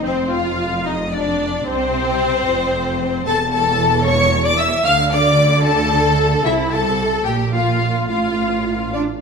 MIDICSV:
0, 0, Header, 1, 6, 480
1, 0, Start_track
1, 0, Tempo, 533808
1, 44, Time_signature, 6, 3, 24, 8
1, 6283, Tempo, 556586
1, 8202, End_track
2, 0, Start_track
2, 0, Title_t, "Violin section"
2, 0, Program_c, 0, 48
2, 42, Note_on_c, 0, 72, 83
2, 280, Note_off_c, 0, 72, 0
2, 293, Note_on_c, 0, 77, 87
2, 762, Note_off_c, 0, 77, 0
2, 778, Note_on_c, 0, 75, 96
2, 1011, Note_on_c, 0, 74, 100
2, 1014, Note_off_c, 0, 75, 0
2, 1494, Note_off_c, 0, 74, 0
2, 1495, Note_on_c, 0, 72, 114
2, 2932, Note_off_c, 0, 72, 0
2, 2932, Note_on_c, 0, 81, 113
2, 3155, Note_off_c, 0, 81, 0
2, 3166, Note_on_c, 0, 81, 111
2, 3635, Note_off_c, 0, 81, 0
2, 3650, Note_on_c, 0, 85, 117
2, 3998, Note_off_c, 0, 85, 0
2, 4010, Note_on_c, 0, 86, 108
2, 4120, Note_on_c, 0, 88, 114
2, 4124, Note_off_c, 0, 86, 0
2, 4360, Note_off_c, 0, 88, 0
2, 4360, Note_on_c, 0, 89, 119
2, 4432, Note_off_c, 0, 89, 0
2, 4603, Note_on_c, 0, 86, 114
2, 5073, Note_off_c, 0, 86, 0
2, 5080, Note_on_c, 0, 81, 120
2, 5787, Note_off_c, 0, 81, 0
2, 5803, Note_on_c, 0, 76, 92
2, 5875, Note_off_c, 0, 76, 0
2, 6029, Note_on_c, 0, 81, 97
2, 6505, Note_off_c, 0, 81, 0
2, 6513, Note_on_c, 0, 79, 87
2, 6582, Note_off_c, 0, 79, 0
2, 6749, Note_on_c, 0, 77, 93
2, 7219, Note_off_c, 0, 77, 0
2, 7229, Note_on_c, 0, 77, 87
2, 7944, Note_off_c, 0, 77, 0
2, 8202, End_track
3, 0, Start_track
3, 0, Title_t, "Violin section"
3, 0, Program_c, 1, 48
3, 40, Note_on_c, 1, 60, 71
3, 279, Note_off_c, 1, 60, 0
3, 279, Note_on_c, 1, 65, 78
3, 759, Note_on_c, 1, 63, 84
3, 765, Note_off_c, 1, 65, 0
3, 831, Note_off_c, 1, 63, 0
3, 1006, Note_on_c, 1, 62, 77
3, 1482, Note_off_c, 1, 62, 0
3, 1491, Note_on_c, 1, 60, 97
3, 2930, Note_off_c, 1, 60, 0
3, 2935, Note_on_c, 1, 69, 90
3, 3007, Note_off_c, 1, 69, 0
3, 3161, Note_on_c, 1, 69, 97
3, 3633, Note_off_c, 1, 69, 0
3, 3649, Note_on_c, 1, 73, 102
3, 3991, Note_on_c, 1, 74, 88
3, 4005, Note_off_c, 1, 73, 0
3, 4041, Note_off_c, 1, 74, 0
3, 4112, Note_on_c, 1, 76, 88
3, 4184, Note_off_c, 1, 76, 0
3, 4352, Note_on_c, 1, 77, 108
3, 4591, Note_off_c, 1, 77, 0
3, 4597, Note_on_c, 1, 74, 103
3, 5070, Note_off_c, 1, 74, 0
3, 5085, Note_on_c, 1, 69, 101
3, 5804, Note_off_c, 1, 69, 0
3, 5804, Note_on_c, 1, 64, 95
3, 6044, Note_off_c, 1, 64, 0
3, 6053, Note_on_c, 1, 69, 92
3, 6514, Note_on_c, 1, 67, 88
3, 6526, Note_off_c, 1, 69, 0
3, 6755, Note_off_c, 1, 67, 0
3, 6759, Note_on_c, 1, 65, 80
3, 7224, Note_off_c, 1, 65, 0
3, 7235, Note_on_c, 1, 65, 75
3, 7947, Note_off_c, 1, 65, 0
3, 7961, Note_on_c, 1, 74, 73
3, 8030, Note_off_c, 1, 74, 0
3, 8202, End_track
4, 0, Start_track
4, 0, Title_t, "Viola section"
4, 0, Program_c, 2, 48
4, 43, Note_on_c, 2, 60, 77
4, 280, Note_on_c, 2, 65, 79
4, 286, Note_off_c, 2, 60, 0
4, 765, Note_off_c, 2, 65, 0
4, 771, Note_on_c, 2, 63, 74
4, 843, Note_off_c, 2, 63, 0
4, 1012, Note_on_c, 2, 62, 77
4, 1484, Note_off_c, 2, 62, 0
4, 1501, Note_on_c, 2, 60, 94
4, 2907, Note_off_c, 2, 60, 0
4, 2935, Note_on_c, 2, 69, 89
4, 3007, Note_off_c, 2, 69, 0
4, 3169, Note_on_c, 2, 69, 93
4, 3637, Note_off_c, 2, 69, 0
4, 3648, Note_on_c, 2, 73, 93
4, 3997, Note_off_c, 2, 73, 0
4, 4006, Note_on_c, 2, 74, 96
4, 4124, Note_off_c, 2, 74, 0
4, 4132, Note_on_c, 2, 76, 98
4, 4366, Note_off_c, 2, 76, 0
4, 4372, Note_on_c, 2, 77, 99
4, 4444, Note_off_c, 2, 77, 0
4, 4607, Note_on_c, 2, 74, 93
4, 5074, Note_off_c, 2, 74, 0
4, 5076, Note_on_c, 2, 69, 95
4, 5785, Note_off_c, 2, 69, 0
4, 5796, Note_on_c, 2, 64, 88
4, 6039, Note_off_c, 2, 64, 0
4, 6042, Note_on_c, 2, 69, 89
4, 6521, Note_off_c, 2, 69, 0
4, 6526, Note_on_c, 2, 67, 81
4, 6595, Note_off_c, 2, 67, 0
4, 6759, Note_on_c, 2, 65, 77
4, 7230, Note_off_c, 2, 65, 0
4, 7244, Note_on_c, 2, 65, 78
4, 7952, Note_off_c, 2, 65, 0
4, 8202, End_track
5, 0, Start_track
5, 0, Title_t, "Cello section"
5, 0, Program_c, 3, 48
5, 36, Note_on_c, 3, 41, 71
5, 1453, Note_off_c, 3, 41, 0
5, 1494, Note_on_c, 3, 48, 84
5, 2200, Note_off_c, 3, 48, 0
5, 2220, Note_on_c, 3, 41, 86
5, 2920, Note_off_c, 3, 41, 0
5, 2933, Note_on_c, 3, 40, 91
5, 4326, Note_off_c, 3, 40, 0
5, 4366, Note_on_c, 3, 50, 92
5, 5775, Note_off_c, 3, 50, 0
5, 5797, Note_on_c, 3, 48, 84
5, 6505, Note_off_c, 3, 48, 0
5, 6523, Note_on_c, 3, 46, 76
5, 7226, Note_off_c, 3, 46, 0
5, 7237, Note_on_c, 3, 45, 71
5, 7963, Note_off_c, 3, 45, 0
5, 7974, Note_on_c, 3, 62, 90
5, 8043, Note_off_c, 3, 62, 0
5, 8202, End_track
6, 0, Start_track
6, 0, Title_t, "Double bass section"
6, 0, Program_c, 4, 48
6, 40, Note_on_c, 4, 29, 74
6, 1456, Note_off_c, 4, 29, 0
6, 1496, Note_on_c, 4, 36, 74
6, 2201, Note_off_c, 4, 36, 0
6, 2219, Note_on_c, 4, 29, 72
6, 2919, Note_off_c, 4, 29, 0
6, 2938, Note_on_c, 4, 28, 88
6, 4328, Note_off_c, 4, 28, 0
6, 4362, Note_on_c, 4, 38, 84
6, 5773, Note_off_c, 4, 38, 0
6, 5799, Note_on_c, 4, 36, 82
6, 6505, Note_off_c, 4, 36, 0
6, 6518, Note_on_c, 4, 34, 72
6, 7224, Note_off_c, 4, 34, 0
6, 7235, Note_on_c, 4, 33, 70
6, 8202, Note_off_c, 4, 33, 0
6, 8202, End_track
0, 0, End_of_file